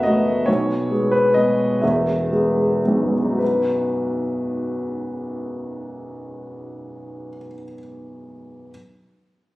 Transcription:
Already playing: F#1 F#2 A3 B3 F#4 E5 F#5
0.03 A3 B3 F#4 D#5
0.46 B1 B2 C#5
0.91 G#3 B3 G#4
1.11 B4
1.34 G#3 B3 G#4 D#5
1.81 E1 E2 E5
2.31 G#3 B3 G#4
2.85 B1 G#3 B3 G#4
2.96 F#2
3.05 F#3
3.14 B3
3.23 D#4
3.32 F#4
3.38 B4

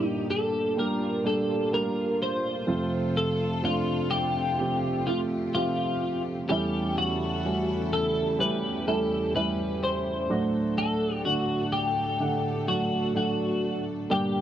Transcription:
Already playing: G2 A#2 D3 G3 A#3 D4 F4 G4
0.04 D#4
0.31 A4
0.77 G3 A#3 D4 F4 G4 A#4
1.24 G3 A#3 D4 G4 A4
1.72 G3 A#3 D4 A#4
2.23 C5
2.67 F2 C3 F3 A3 C4 F4 A4
3.17 A4
3.63 F3 A3 C4 D4 F4
4.11 G4
4.58 F3 A3 C4 G4
5.07 F3 A3 C4 F4
5.55 F3 A3 C4 F4 G4
6.49 E2 C#3 E3 G3 A3 C#4 E4 G4 A4
6.98 F#4
7.45 G3 A3 C#4 F#4
7.93 A4
8.38 G3 A3 C#4 G4 B4
8.87 G3 A3 C#4 E4 A4
9.35 G3 A3 C#4 E4 B4
9.84 C5
10.30 D2 A2 F#3 A3 D4 F#4 A4
10.78 A4
11.25 D3 A3 D4 F#4 F#5
11.72 G4
12.20 D3 A3 D4 F#5
12.68 F#3 A3 D4 F#4
13.15 F#3 A3 D4 F#4 A4
14.10 G2 A#2 D3 G3 A#3 D4 G4

